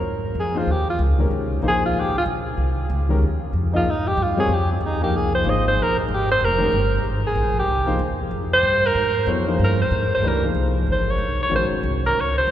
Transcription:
0.02 upright bass G#2
0.35 upright bass F2
0.40 alto saxophone G#4
0.54 grand piano F3 A#3 D#4 G#4 C5, alto saxophone F4
0.67 upright bass D#2
0.71 alto saxophone G4
0.90 alto saxophone F4
0.99 upright bass C#2
1.18 grand piano D#3 G#3 C#4 G4 A#4
1.31 upright bass C2
1.62 upright bass A#1, grand piano F3 A#3 D#4 G#4 C5
1.68 alto saxophone G#4
1.86 alto saxophone F4
1.94 upright bass G#1
2.00 alto saxophone G4
2.18 alto saxophone F4
2.26 upright bass A#1
2.57 upright bass C2
2.90 upright bass C#2
3.09 grand piano D#3 G#3 C#4 G4 A#4
3.22 upright bass D#2
3.53 upright bass F2
3.72 grand piano F3 A#3 D#4 G#4 D#5
3.76 alto saxophone F4
3.85 upright bass G#2
3.90 alto saxophone D#4
4.07 alto saxophone G4
4.17 upright bass G2
4.23 alto saxophone F4
4.37 grand piano G3 C4 F4 A#4 C#5, alto saxophone G#4
4.48 upright bass F2
4.53 alto saxophone G4
4.72 alto saxophone C4
4.81 upright bass D#2
4.85 alto saxophone D#4
5.00 grand piano F3 A#3 D#4 G#4 A#4, alto saxophone G4
5.13 upright bass C2, alto saxophone G#4
5.35 alto saxophone C5
5.44 upright bass G#1, grand piano F3 A#3 D#4 G#4 C5
5.49 alto saxophone D#5
5.67 alto saxophone C5
5.77 upright bass A#1
5.82 alto saxophone A#4
5.99 alto saxophone D#4
6.08 upright bass G#1
6.14 alto saxophone G4
6.31 alto saxophone C5
6.41 upright bass F1, alto saxophone A#4
6.58 grand piano D#3 G#3 C#4 G4 A#4
6.72 upright bass G1
7.04 upright bass G#1
7.27 alto saxophone G#4
7.35 upright bass A#1
7.59 alto saxophone G4
7.68 upright bass C2
7.86 grand piano F3 A#3 D#4 G#4 C5
7.99 upright bass D#2
8.31 upright bass F2
8.53 alto saxophone C5
8.63 upright bass G2
8.86 alto saxophone A#4
8.95 upright bass G#2
9.26 upright bass F2, grand piano F#3 B3 E4 A4 C#5
9.46 grand piano F3 A#3 D#4 G#4 C5
9.59 upright bass G2
9.64 alto saxophone A#4
9.82 alto saxophone C5
9.91 upright bass G#2
10.14 alto saxophone C5
10.22 upright bass C#2, grand piano E3 A3 D4 G4 B4
10.28 alto saxophone A#4
10.42 grand piano F3 A#3 D#4 G#4 C5
10.54 upright bass C2
10.87 upright bass G#1
10.92 alto saxophone C5
11.10 alto saxophone C#5
11.18 upright bass B1
11.43 alto saxophone C#5
11.50 upright bass A#1, grand piano D#3 G#3 C#4 F#4 A#4
11.55 alto saxophone C5
11.71 muted upright bass stroke
11.83 upright bass C2
12.06 alto saxophone A#4
12.15 upright bass C#2
12.20 alto saxophone C#5
12.38 alto saxophone C5
12.47 upright bass D#2

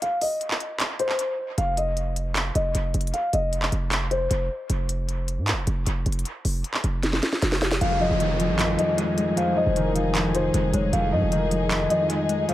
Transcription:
0.02 grand piano F5, closed hi-hat
0.21 grand piano D#5, open hi-hat
0.41 closed hi-hat
0.51 clap
0.60 closed hi-hat
0.80 clap, closed hi-hat
0.99 grand piano C5, closed hi-hat
1.09 clap
1.19 closed hi-hat
1.58 808-style bass F1, grand piano F5, closed hi-hat
1.77 grand piano D#5, closed hi-hat
1.97 closed hi-hat
2.16 closed hi-hat
2.36 clap, closed hi-hat
2.55 808-style bass F1, grand piano D#5, closed hi-hat
2.75 808-style bass F1, closed hi-hat
2.94 808-style bass F1, closed hi-hat
3.01 closed hi-hat
3.07 closed hi-hat
3.14 grand piano F5, closed hi-hat
3.33 808-style bass F1, grand piano D#5, closed hi-hat
3.53 closed hi-hat
3.62 clap
3.72 808-style bass F1, closed hi-hat
3.92 clap, closed hi-hat
4.11 grand piano C5, closed hi-hat
4.31 808-style bass F1, closed hi-hat
4.70 808-style bass F1, closed hi-hat
4.89 closed hi-hat
5.09 closed hi-hat
5.28 closed hi-hat
5.38 808-style bass G#2
5.48 clap, closed hi-hat
5.52 808-style bass F1
5.67 808-style bass F1, closed hi-hat
5.86 808-style bass F1, closed hi-hat
6.06 808-style bass F1, closed hi-hat
6.12 closed hi-hat
6.19 closed hi-hat
6.25 closed hi-hat
6.45 808-style bass F1, open hi-hat
6.64 closed hi-hat
6.74 clap
6.84 808-style bass F1, closed hi-hat
7.03 snare, closed hi-hat
7.13 snare
7.23 snare, closed hi-hat
7.33 snare
7.42 808-style bass F1, snare, closed hi-hat
7.52 snare
7.62 snare
7.71 snare
7.81 808-style bass F1, harp F2, string section F3 D#4 G#4, soft synth lead F5, grand piano F5, closed hi-hat, downlifter
8.01 harp F3, grand piano D#5
8.11 808-style bass F1
8.20 harp D#3, soft synth lead D#5, closed hi-hat
8.40 harp F3, closed hi-hat
8.49 808-style bass G#1
8.59 harp F2, clap, closed hi-hat
8.79 harp F3, grand piano D#5, closed hi-hat
8.98 harp G#3, closed hi-hat
9.18 harp G#3, closed hi-hat
9.37 harp F2, soft synth lead C5, grand piano F5, closed hi-hat
9.57 harp F3, grand piano D#5
9.66 808-style bass F1
9.76 harp D#3, closed hi-hat
9.95 harp F3, soft synth lead F5, closed hi-hat
10.15 harp F2, clap, closed hi-hat
10.35 harp F3, grand piano C5, closed hi-hat
10.54 808-style bass F1, harp G#3, closed hi-hat
10.74 808-style bass F1, harp G#3, soft synth lead C#5, closed hi-hat
10.93 808-style bass F1, harp F2, soft synth lead F5, grand piano F5, closed hi-hat
11.12 808-style bass G#2, harp F3, grand piano D#5
11.22 808-style bass F1
11.32 harp D#3, soft synth lead D#5, closed hi-hat
11.51 harp F3, closed hi-hat
11.71 harp F2, clap, closed hi-hat
11.90 harp F3, grand piano D#5, closed hi-hat
12.10 harp G#3, closed hi-hat
12.29 harp G#3, closed hi-hat
12.49 harp F2, soft synth lead C5, grand piano F5, closed hi-hat

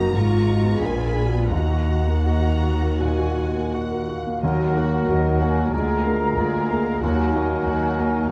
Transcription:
Already playing: double bass section F#1, cello section F#2, grand piano F#2 D#4 F#4 A#4, viola section D#4, french horn section F#4, violin section A#5
0.00 grand piano A#3
0.13 double bass section G#1, grand piano G#2, cello section G#2, french horn section F4, viola section F4, violin section C#6
0.30 grand piano F4
0.46 grand piano D#4
0.51 french horn section F#4
0.63 grand piano B3
0.70 french horn section G#4
0.80 grand piano A#1, double bass section A#1, cello section A#2, viola section F4, french horn section A#4, violin section G#5 B5
0.93 french horn section B4
0.98 grand piano G#4
1.04 french horn section A#4
1.13 grand piano D4, french horn section G#4
1.25 french horn section F#4
1.33 grand piano B3
1.37 french horn section F4
1.51 grand piano D#2, cello section D#2, double bass section D#2, french horn section D#4, viola section F#4, violin section F#5 A#5
1.70 grand piano F#4
1.89 grand piano D#4
2.08 grand piano A#3
2.25 grand piano F#4, violin section A#5
2.45 grand piano A#4
2.63 grand piano F#4
2.82 grand piano A#3
3.00 grand piano A#2, violin section G#5
3.19 grand piano F#4
3.37 grand piano D#4
3.55 grand piano A#3
3.73 grand piano F#4, violin section F#5
3.92 grand piano A#4
4.07 grand piano F#4, flute section F5
4.27 grand piano A#3
4.42 double bass section D#2, cello section D#2, grand piano D#2, timpani D#3, viola section F#3, bassoon F#3, french horn section A#3 A#4, clarinet F#4, violin section A#4 D#5, cor anglais A#4, flute section F#5
4.75 viola section A#3, grand piano A#3 F#4, violin section F#4 F#5
5.07 cello section D#2, double bass section D#2, viola section F#3, grand piano D#4 F#4, violin section A#4 D#5
5.38 viola section A#3, grand piano A#3 F#4, violin section F#4 F#5, flute section G#5
5.71 cello section D2, double bass section D2, grand piano D2, bassoon G#3, viola section G#3, clarinet F4, violin section G#4 D5, french horn section G#4, cor anglais A#4, flute section A#5
6.04 grand piano A#3 G#4, viola section A#3, violin section A#4 F5
6.37 cello section D2, double bass section D2, viola section G#3, grand piano F4 G#4, violin section G#4 D5
6.69 grand piano A#3 G#4, viola section A#3, violin section A#4 F5
7.02 cello section D#2, double bass section D#2, grand piano D#2, bassoon F#3, viola section F#3, clarinet D#4, violin section F#4 F#5, french horn section F#4, cor anglais A#4, flute section G#5
7.33 grand piano A#3 F#4, viola section A#3, violin section D#4 D#5
7.65 double bass section D#2, cello section D#2, viola section F#3, grand piano D#4 F#4, violin section F#4 F#5
7.98 grand piano A#3 F#4, viola section A#3, violin section D#4 D#5

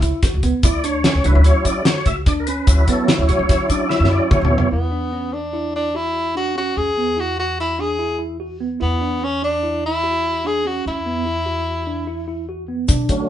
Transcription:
0.02 tine electric piano E4, kick, closed hi-hat, shaker
0.23 tine electric piano F#4, kick, snare, closed hi-hat
0.34 upright bass C#2
0.43 tine electric piano B3, kick, closed hi-hat
0.63 upright bass D2, tine electric piano E4, tonewheel organ D5, kick, closed hi-hat, shaker
0.84 tine electric piano D4, tonewheel organ C#5, closed hi-hat, shaker
1.04 tine electric piano C#4, snare, closed hi-hat
1.14 upright bass C#2
1.24 upright bass C#2, tonewheel organ F#3 C#4 E4 B4, tine electric piano D4, closed hi-hat
1.35 upright bass D2
1.44 tine electric piano E4, tonewheel organ C#5, closed hi-hat, shaker
1.65 tonewheel organ D5, kick, closed hi-hat, shaker
1.85 tine electric piano F#4, tonewheel organ C#5, snare, closed hi-hat, shaker
2.06 upright bass C#2, tonewheel organ E5, kick, closed hi-hat, shaker
2.26 upright bass D2, tine electric piano D4, tonewheel organ D5, kick, closed hi-hat
2.40 tonewheel organ A#4
2.47 tine electric piano C#4, tonewheel organ B4, closed hi-hat
2.67 upright bass D2, tonewheel organ F#3 C#4 E4, kick, closed hi-hat, shaker
2.88 tine electric piano B3, tonewheel organ A4, kick, closed hi-hat
3.08 tine electric piano E4, snare, closed hi-hat, shaker
3.19 upright bass D2
3.28 upright bass D3, tine electric piano F#4, tonewheel organ C#5, closed hi-hat
3.39 upright bass D2
3.49 kick, snare, closed hi-hat, shaker
3.69 tine electric piano D4, tonewheel organ D5, kick, closed hi-hat, shaker
3.89 tine electric piano E4, tonewheel organ E5, snare, shaker
4.00 upright bass F#2
4.04 snare
4.10 tine electric piano E4, tonewheel organ D5
4.31 tine electric piano F#4, tonewheel organ C#5, kick, mid tom, shaker
4.41 upright bass D2, mid tom
4.51 tine electric piano B3
4.58 floor tom
4.71 upright bass E2, tenor saxophone B3, tine electric piano E4
4.92 tine electric piano D4
5.13 tine electric piano C#4
5.33 tine electric piano D4, tenor saxophone D4
5.53 tine electric piano E4
5.76 tenor saxophone D4
5.94 tenor saxophone E4, tine electric piano F#4
6.35 tine electric piano D4, tenor saxophone F#4
6.56 tine electric piano C#4, tenor saxophone F#4
6.77 upright bass E2, tenor saxophone G#4
6.97 tine electric piano B3
7.17 tine electric piano E4, tenor saxophone F#4
7.39 tenor saxophone F#4
7.60 tenor saxophone E4
7.79 tine electric piano D4, tenor saxophone G#4
7.99 tine electric piano E4
8.19 tine electric piano E4
8.40 tine electric piano F#4
8.60 tine electric piano B3
8.80 upright bass E2, tenor saxophone B3, tine electric piano E4
9.01 tine electric piano D4
9.22 tine electric piano C#4, tenor saxophone C#4
9.42 tine electric piano D4, tenor saxophone D4
9.63 tine electric piano E4
9.86 tenor saxophone E4
10.04 tine electric piano F#4
10.44 tine electric piano D4, tenor saxophone G#4
10.65 tine electric piano C#4, tenor saxophone F#4
10.86 upright bass E2, tenor saxophone E4
11.06 tine electric piano B3
11.26 tine electric piano E4
11.46 tine electric piano F#4
11.87 tine electric piano D4
12.07 tine electric piano E4
12.28 tine electric piano E4
12.49 tine electric piano F#4
12.68 tine electric piano B3
12.88 upright bass B1, tine electric piano D4, kick, closed hi-hat, shaker
13.09 tonewheel organ D3 F#3 A3 C#4, kick, closed hi-hat

